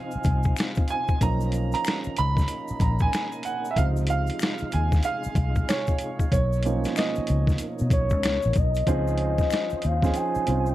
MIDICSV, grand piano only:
0, 0, Header, 1, 2, 480
1, 0, Start_track
1, 0, Key_signature, -5, "major"
1, 0, Tempo, 638298
1, 910, Time_signature, 4, 2, 24, 8
1, 8082, End_track
2, 0, Start_track
2, 0, Title_t, "Grand piano"
2, 0, Program_c, 0, 0
2, 0, Control_c, 0, 64, 127
2, 0, Note_on_c, 0, 53, 54
2, 0, Note_on_c, 0, 60, 42
2, 0, Note_on_c, 0, 63, 61
2, 0, Note_on_c, 0, 77, 93
2, 0, Note_on_c, 0, 80, 97
2, 680, Note_off_c, 0, 80, 0
2, 680, Note_on_c, 0, 80, 101
2, 704, Note_off_c, 0, 77, 0
2, 884, Note_off_c, 0, 53, 0
2, 886, Note_off_c, 0, 60, 0
2, 889, Note_off_c, 0, 63, 0
2, 918, Note_on_c, 0, 53, 59
2, 921, Control_c, 0, 64, 0
2, 921, Note_on_c, 0, 58, 50
2, 922, Note_off_c, 0, 80, 0
2, 922, Note_on_c, 0, 82, 99
2, 923, Note_on_c, 0, 61, 47
2, 927, Note_on_c, 0, 63, 54
2, 1055, Control_c, 0, 64, 127
2, 1255, Note_off_c, 0, 53, 0
2, 1257, Note_off_c, 0, 58, 0
2, 1258, Note_off_c, 0, 61, 0
2, 1260, Note_off_c, 0, 63, 0
2, 1278, Note_off_c, 0, 82, 0
2, 1307, Note_on_c, 0, 82, 99
2, 1642, Note_on_c, 0, 83, 121
2, 1644, Note_off_c, 0, 82, 0
2, 2119, Note_on_c, 0, 82, 87
2, 2130, Note_off_c, 0, 83, 0
2, 2268, Note_off_c, 0, 82, 0
2, 2270, Note_on_c, 0, 80, 98
2, 2594, Note_on_c, 0, 78, 96
2, 2605, Note_off_c, 0, 80, 0
2, 2788, Note_on_c, 0, 76, 83
2, 2798, Note_off_c, 0, 78, 0
2, 2829, Note_off_c, 0, 76, 0
2, 2837, Note_on_c, 0, 53, 56
2, 2838, Control_c, 0, 64, 0
2, 2840, Note_on_c, 0, 77, 106
2, 2842, Note_on_c, 0, 48, 53
2, 2845, Note_on_c, 0, 63, 62
2, 2893, Note_off_c, 0, 77, 0
2, 2991, Control_c, 0, 64, 127
2, 3082, Note_on_c, 0, 77, 105
2, 3560, Note_on_c, 0, 80, 82
2, 3570, Note_off_c, 0, 77, 0
2, 3613, Note_off_c, 0, 80, 0
2, 3797, Note_on_c, 0, 77, 108
2, 4276, Note_on_c, 0, 73, 96
2, 4288, Note_off_c, 0, 77, 0
2, 4723, Note_off_c, 0, 53, 0
2, 4726, Note_off_c, 0, 48, 0
2, 4727, Note_off_c, 0, 63, 0
2, 4745, Note_off_c, 0, 73, 0
2, 4756, Note_on_c, 0, 73, 93
2, 4760, Control_c, 0, 64, 0
2, 4911, Control_c, 0, 64, 127
2, 4999, Note_on_c, 0, 53, 62
2, 5002, Note_on_c, 0, 58, 56
2, 5004, Note_on_c, 0, 61, 55
2, 5008, Note_on_c, 0, 63, 58
2, 5239, Note_on_c, 0, 75, 79
2, 5247, Note_off_c, 0, 73, 0
2, 6404, Note_off_c, 0, 75, 0
2, 6644, Note_off_c, 0, 53, 0
2, 6646, Note_off_c, 0, 58, 0
2, 6647, Note_off_c, 0, 61, 0
2, 6649, Note_off_c, 0, 63, 0
2, 6670, Note_on_c, 0, 53, 94
2, 6675, Note_on_c, 0, 60, 77
2, 6678, Note_on_c, 0, 61, 76
2, 6680, Control_c, 0, 64, 0
2, 6682, Note_on_c, 0, 63, 76
2, 6688, Note_on_c, 0, 68, 89
2, 6805, Control_c, 0, 64, 127
2, 7362, Note_off_c, 0, 53, 0
2, 7364, Note_off_c, 0, 60, 0
2, 7366, Note_off_c, 0, 61, 0
2, 7368, Note_off_c, 0, 63, 0
2, 7371, Note_off_c, 0, 68, 0
2, 7539, Note_on_c, 0, 53, 76
2, 7543, Note_on_c, 0, 60, 66
2, 7546, Note_on_c, 0, 61, 66
2, 7550, Note_on_c, 0, 63, 67
2, 7555, Note_on_c, 0, 68, 86
2, 7819, Note_off_c, 0, 53, 0
2, 7821, Note_off_c, 0, 60, 0
2, 7823, Note_off_c, 0, 61, 0
2, 7824, Note_off_c, 0, 63, 0
2, 7827, Note_off_c, 0, 68, 0
2, 7864, Note_on_c, 0, 53, 65
2, 7869, Note_on_c, 0, 60, 60
2, 7873, Note_on_c, 0, 61, 59
2, 7879, Note_on_c, 0, 63, 62
2, 7884, Note_on_c, 0, 65, 71
2, 8082, Note_off_c, 0, 53, 0
2, 8082, Note_off_c, 0, 60, 0
2, 8082, Note_off_c, 0, 61, 0
2, 8082, Note_off_c, 0, 63, 0
2, 8082, Note_off_c, 0, 65, 0
2, 8082, End_track
0, 0, End_of_file